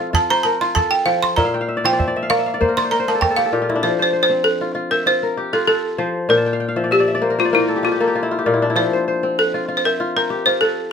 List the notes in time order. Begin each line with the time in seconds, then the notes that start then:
Already playing: F3 C4 A4 C5
0.00 F4
0.13 F4 A5, calabash thump
0.30 C5 A#5, calabash click
0.43 A#4 A5
0.61 F4 C6
0.75 A4 A5, calabash thump, calabash click
0.91 G5
1.06 F3 F5, calabash click
1.23 C6, calabash click
1.36 A#2 E5 A#5, calabash thump
1.45 F5
1.54 G5, calabash click
1.61 F5
1.68 E5
1.77 D5
1.84 F3 C5 G5, calabash click
1.93 D5
1.99 E5, calabash thump
2.08 D5
2.16 E5, calabash click
2.23 F5
2.30 A#3 D5 F5, calabash click
2.39 E5
2.46 F5, calabash click
2.54 D5
2.60 A#3 C5, calabash thump
2.69 A#4
2.77 D5 C6, calabash click
2.85 C5
2.91 A#4 A#5
3.00 C5
3.08 A#3 A#4 A5
3.15 A4
3.21 A#4 G5, calabash thump, calabash click
3.30 A4
3.36 G4 F5
3.45 A4
3.53 A#2 G4, calabash click
3.62 F4
3.69 E4, calabash click
3.75 D4
3.83 F3 C5
3.99 C5
4.13 C5
4.23 C5
4.30 C4
4.44 A4
4.61 F4
4.75 F4
4.91 A#4 E5
5.06 F4 C5
5.23 A#4
5.37 G4
5.53 F4 A4
5.67 A4
5.98 F3 C5
6.29 A#2 A#4
6.37 A5
6.46 G5
6.53 F5
6.60 G5
6.68 F5
6.76 F3 E5
6.84 D5
6.91 G4 E5
7.00 D5
7.08 E5
7.15 D5
7.21 A#3 C5
7.30 A#4
7.39 F4 C5
7.45 D5
7.53 A#3 E4 C5
7.60 A#4
7.68 A4
7.76 G4
7.83 F4
7.92 G4
8.00 A#3 A4
8.07 G4
8.15 F4
8.23 E4
8.31 F4
8.39 G4
8.46 A#2 F4
8.54 E4
8.62 D4
8.70 E4
8.76 F3 C5
8.93 C5
9.08 C5
9.23 C4
9.39 A4
9.54 F4
9.68 F4
9.77 C5
9.85 A#4 E5
10.00 F4
10.16 A#4
10.30 G4
10.46 F4 C5
10.61 A4